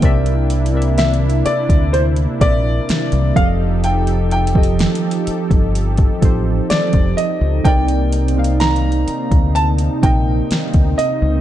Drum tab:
HH |x--x--x-x-x-x-x-x-x--x--x--x--x-----x--x--x-----|x--x--x-x-x-x-x-x-x--x--x--x--x-----x--x--x-----|x--x--x-x-x-x-x-x-x--x--x--x--x-----x--x--x-----|
SD |------------o-----------------------o-----------|------------o-----------------------o-----------|------------o-----------------------o-----------|
BD |o--------------------o--------o-----------o-----|---------o-----------o-----o--o--------o--------|o--------------------o--------o--------o--------|